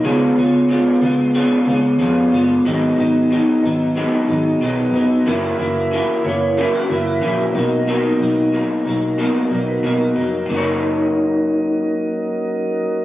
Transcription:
<<
  \new Staff \with { instrumentName = "Vibraphone" } { \time 4/4 \key fis \major \tempo 4 = 92 r1 | r1 | r4. cis''8 ais'16 fis'16 e'16 fis'8. r8 | r2 r8. b'16 ais'16 fis'8. |
r1 | }
  \new Staff \with { instrumentName = "Tonewheel organ" } { \time 4/4 \key fis \major <b eis' gis' cis''>4. r8 <b eis' gis' cis''>8 <b dis' eis' gis' cis''>4 r8 | <b fis' gis' dis''>4. r8 <b fis' gis' dis''>8 <b fis' gis' dis''>4 r8 | <cis' fis' ais' e''>4. r8 <cis' fis' ais' e''>8 <cis' fis' ais' e''>4 <b fis' ais' dis''>8~ | <b fis' ais' dis''>4 r4 <b fis' ais' dis''>8 <b fis' ais' d'' dis''>4 r8 |
<cis' fis' ais' dis''>1 | }
  \new Staff \with { instrumentName = "Clean electric guitar" } { \time 4/4 \key fis \major <cis gis b eis'>8 <gis b eis'>8 <cis gis b eis'>8 <gis b eis'>8 <cis gis b eis'>8 <gis b eis'>8 <cis gis b eis'>8 <gis b eis'>8 | <gis, dis fis b dis'>8 <fis b dis'>8 <dis fis b dis'>8 <fis b dis'>8 <gis, dis fis b dis'>8 <fis b dis'>8 <dis fis b dis'>8 <fis b dis'>8 | <fis, cis e ais e'>8 <e ais e'>8 <cis e ais e'>8 <e ais e'>8 <fis, cis e ais e'>8 <e ais e'>8 <cis e ais e'>8 <fis ais dis'>8 | <b, fis ais dis'>8 <fis ais dis'>8 <b, fis ais dis'>8 <fis ais dis'>8 <b, fis ais dis'>8 <fis ais dis'>8 <b, fis ais dis'>8 <fis ais dis'>8 |
<fis ais dis' ais' cis''>1 | }
  \new Staff \with { instrumentName = "Fingered electric bass" } { \clef bass \time 4/4 \key fis \major cis,8 cis,8. r16 cis,8. r16 cis,8 eis,8 fis,,8 | gis,,8 gis,,8. r16 gis,,8. r16 gis,,8 b,,8 eis,,8 | fis,,8 fis,,8. r16 fis,,8. r16 fis,,8 ais,,8 b,,8~ | b,,8 b,,8. r16 b,,8. r16 b,,8 b,,8 eis,,8 |
fis,,1 | }
>>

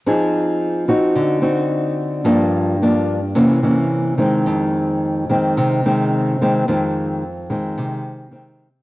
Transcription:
\new Staff \with { instrumentName = "Nylon-string guitar" } { \clef bass \time 4/4 \key f \minor \tempo 4 = 109 << { <c' ees' aes'>4. <c' ees' ges'>4 <c' ees' fis'>4. | <f bes d'>4 <f bes d'>8 r8 <e bes des'>8 <e bes des'>4 <ees aes c'>8~ | <ees aes c'>4. <ees aes c'>4 <ees aes c'>4 <ees aes c'>8 | <ees aes c'>4 r8 <ees aes c'>4. <ees aes c'>8 r8 | } \\ { f2 d2 | g,2 c2 | f,2 c2 | f,2 c2 | } >> }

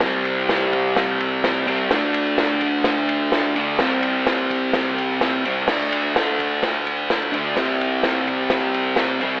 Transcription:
<<
  \new Staff \with { instrumentName = "Distorted electric guitar" } { \clef bass \time 4/4 \key c \lydian \tempo 4 = 127 <c g c'>2.~ <c g c'>8 <c g c'>8 | <d a d'>2.~ <d a d'>8 <d a d'>8 | <c g c'>2.~ <c g c'>8 <c g c'>8 | <d a d'>2.~ <d a d'>8 <d a d'>8 |
<c g c'>2.~ <c g c'>8 <c g c'>8 | }
  \new DrumStaff \with { instrumentName = "Drums" } \drummode { \time 4/4 <bd cymr sn>8 cymr8 <cymr sn>8 <bd cymr>8 <bd cymr sn>8 cymr8 <cymr sn>8 cymr8 | <bd cymr sn>8 cymr8 <cymr sn>8 <bd cymr>8 <bd cymr sn>8 cymr8 <cymr sn>8 cymr8 | <bd cymr sn>8 cymr8 <cymr sn>8 <bd cymr>8 <bd cymr sn>8 cymr8 <cymr sn>8 cymr8 | <cymc bd sn>8 cymr8 <cymr sn>8 <bd cymr>8 <bd cymr sn>8 cymr8 <cymr sn>8 cymr8 |
<bd cymr sn>8 cymr8 <cymr sn>8 <bd cymr>8 <bd cymr sn>8 cymr8 <cymr sn>8 cymr8 | }
>>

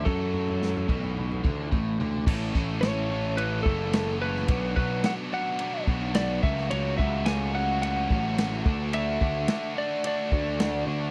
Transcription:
<<
  \new Staff \with { instrumentName = "Lead electric guitar" } { \time 4/4 \key a \major \tempo 4 = 108 a'2. r4 | r4 cis''4 b'8 a'4 b'8~ | b'8 b'8 fis''8 fis''4 r8 d''8 e''8 | cis''8 e''8 gis''8 fis''8 fis''2 |
e''4. d''8 d''4. r8 | }
  \new Staff \with { instrumentName = "Overdriven electric guitar" } { \time 4/4 \key a \major <e a cis' a'>1 | <e a cis'>8 <e a cis'>8 <e a cis'>8 <e a cis'>8 <e a cis'>8 <e a cis'>8 <e a cis'>8 <e a cis'>8 | <fis b d' fis'>8 <fis b d' fis'>8 <fis b d' fis'>8 <fis b d' fis'>8 <fis b d' fis'>8 <fis b d' fis'>8 <fis b d' fis'>8 <a cis' fis'>8 | <a cis' fis'>8 <a cis' fis'>8 <a cis' fis'>8 <a cis' fis'>8 <a cis' fis'>8 <a cis' fis'>8 <a cis' fis'>8 <a d' fis'>8 |
<a d' fis'>8 <a d' fis'>8 <a d' fis'>8 <a d' fis'>8 <a d' fis'>8 <a d' fis'>8 <a d' fis'>8 <a d' fis'>8 | }
  \new Staff \with { instrumentName = "Overdriven electric guitar" } { \time 4/4 \key a \major fis4. b,4 d8 a,8 d8 | <a, e a cis' a'>8 <a, e a cis' a'>8 <a, e a cis' a'>8 <a, e a cis' a'>8 <a, e a cis' a'>8 <a, e a cis' a'>8 <a, e a cis' a'>8 <a, e a cis' a'>8 | <b, fis b d' fis'>8 <b, fis b d' fis'>8 <b, fis b d' fis'>8 <b, fis b d' fis'>8 <b, fis b d' fis'>8 <b, fis b d' fis'>8 <b, fis b d' fis'>8 <cis fis a cis' fis'>8 | <cis fis a cis' fis'>8 <cis fis a cis' fis'>8 <cis fis a cis' fis'>8 <cis fis a cis' fis'>8 <cis fis a cis' fis'>8 <cis fis a cis' fis'>8 <cis fis a cis' fis'>8 <d a d' fis'>8 |
<d a d' fis'>8 <d a d' fis'>8 <d a d' fis'>8 <d a d' fis'>8 <d a d' fis'>8 <d a d' fis'>8 <d a d' fis'>8 <d a d' fis'>8 | }
  \new Staff \with { instrumentName = "Picked electric bass" } { \clef bass \time 4/4 \key a \major fis,4. b,,4 d,8 a,,8 d,8 | a,,8 a,,2 fis,,4. | b,,8 b,,8 r4. b,,4 cis,8 | cis,8 cis,2 a,,4 d,8~ |
d,8 d,8 r4. d,4 d,8 | }
  \new DrumStaff \with { instrumentName = "Drums" } \drummode { \time 4/4 <bd tomfh>8 tomfh16 tomfh16 sn16 tomfh16 <bd tomfh>16 tomfh16 <tomfh toml>16 tomfh16 <bd toml>8 <bd tomfh>8 <tomfh toml>16 toml16 | <cymc bd>8 bd8 <rb sn>4 rb8 bd8 <rb sn>16 sn8 sn16 | <bd rb>8 bd8 <rb sn>4 rb8 bd8 <rb sn>8 bd16 sn16 | rb8 bd8 <rb sn>4 rb8 bd8 <rb sn>8 bd8 |
rb8 bd8 <rb sn>4 rb8 bd8 <rb sn>4 | }
>>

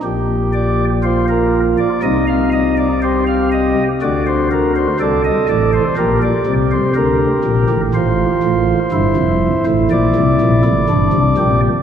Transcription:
<<
  \new Staff \with { instrumentName = "Pipe organ" } { \time 4/4 \key g \minor \tempo 4 = 61 << { r8 d''8 c''16 bes'8 d''16 ees''16 f''16 ees''16 d''16 c''16 f''16 ees''8 | d''16 c''16 bes'16 c''16 d''16 ees''16 d''16 c''16 bes'16 d''8 c''16 bes'4 | c''2 d''2 | } \\ { g'4 f'4 ees'4 g'4 | fis'4 a'4 g'2 | f'4 e'2 d'8 g'8 | } >> }
  \new Staff \with { instrumentName = "Pipe organ" } { \clef bass \time 4/4 \key g \minor <bes,, bes,>2 <c, c>2 | <d, d>4 <c, c>8 <a,, a,>8 <bes,, bes,>8 <c, c>8 <d, d>8 <bes,, bes,>16 <a,, a,>16 | <a,, a,>8 <a,, a,>8 <g,, g,>16 <f,, f,>8 <a,, a,>16 <bes,, bes,>16 <c, c>16 <bes,, bes,>16 <a,, a,>16 <g,, g,>16 <c, c>16 <bes,, bes,>8 | }
>>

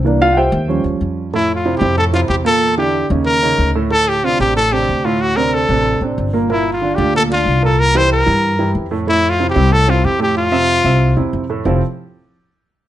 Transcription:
<<
  \new Staff \with { instrumentName = "Trumpet" } { \time 4/4 \key f \major \tempo 4 = 186 r1 | \tuplet 3/2 { e'4 f'8~ f'8 g'4 } a'8 f'8 g'8 a'8~ | a'8 g'4 r8 bes'4. r8 | a'8 g'8 f'8 g'8 a'8 g'4 f'8 |
ges'8 bes'8 a'4. r4. | \tuplet 3/2 { e'4 f'8~ f'8 g'4 } a'8 f'4 a'8 | bes'8 c''8 bes'2 r4 | \tuplet 3/2 { e'4 f'8~ f'8 g'4 } a'8 f'8 g'8 g'8 |
f'2. r4 | r1 | }
  \new Staff \with { instrumentName = "Grand piano" } { \time 4/4 \key f \major r8 <f' f''>8 <g' c'' e'' ges'' g''>4. r4. | <a, a a'>4 <c c' e'>8 <c c' e'>8 <a, a a'>8 <c c' e'>4 <bes, bes a'>8~ | <bes, bes a'>8 <d d' e'>4 <des des' ees'>4 <des des' ees'>4 <a, a a'>8 | <a, a a'>4 <c c' d'>8 <c c' d'>8 <a, a a'>8 <c c' d'>4 <a, a a'>8~ |
<a, a a'>8 <c c' d'>4 <c c' d'>4 <c c' d'>4 <bes, bes bes'>8 | <bes, bes bes'>4 <d d' f'>8 <d d' f'>8 <bes, bes bes'>8 <d d' f'>4 <bes, bes bes'>8~ | <bes, bes bes'>8 <e e' g'>4 <e e' g'>4 <e e' g'>4 <a, a a'>8 | <a, a a'>4 <c c' e'>8 <c c' e'>8 <a, a a'>8 <c c' e'>4 <a, a a'>8~ |
<a, a a'>8 <c c' e''>4 <c c' e''>4 <c c' e'>4 <a, a a'>8 | <f c' e' f' g' a'>8 r2. r8 | }
  \new Staff \with { instrumentName = "Grand piano" } { \clef bass \time 4/4 \key f \major <e bes d'>8 r4. <f g des'>2 | r1 | r1 | r1 |
r1 | r1 | r1 | r1 |
r1 | r1 | }
  \new Staff \with { instrumentName = "Upright bass" } { \clef bass \time 4/4 \key f \major c,4. ees,4 ees,8 f,4~ | f,4. f,4. e,4~ | e,4. ees,4. d,4~ | d,4. a,,4. d,4~ |
d,4. a,,4 a,,8 g,,4~ | g,,4. d,4. c,4~ | c,4. g,4. f,4~ | f,4. c,4. f,4~ |
f,4. c,4 e,8 f,4 | f,,8 r2. r8 | }
>>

